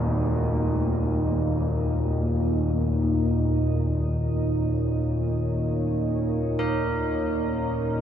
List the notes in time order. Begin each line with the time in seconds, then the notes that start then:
Already playing: D#2 A#2 C#3 D#4 F#4 A#4 D#5
2.92 C#5
6.59 A#4